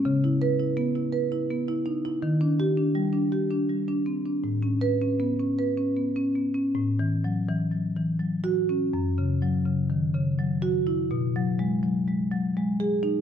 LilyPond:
<<
  \new Staff \with { instrumentName = "Marimba" } { \time 3/4 \key a \lydian \tempo 4 = 82 r8 b'8 r2 | r8 g'8 r2 | r8 b'8 r2 | r2 \tuplet 3/2 { r8 fis'4 } |
r2 \tuplet 3/2 { r8 fis'4 } | r2 \tuplet 3/2 { r8 gis'4 } | }
  \new Staff \with { instrumentName = "Marimba" } { \time 3/4 \key a \lydian cis16 e'8 e'16 b16 e'16 b'16 e'16 b16 e'16 dis'16 e'16 | dis16 d'8 d'16 g16 d'16 g'16 d'16 g16 d'16 c'16 d'16 | a,16 cis'8 cis'16 b16 cis'16 b'16 cis'16 b16 cis'16 b16 cis'16 | \tuplet 3/2 { a,8 e8 fis8 e8 fis8 e8 fis4 cis'8 } |
\tuplet 3/2 { fis,8 cis8 fis8 cis8 dis8 cis8 fis4 e'8 } | \tuplet 3/2 { b,8 fis8 gis8 fis8 gis8 fis8 gis4 dis'8 } | }
>>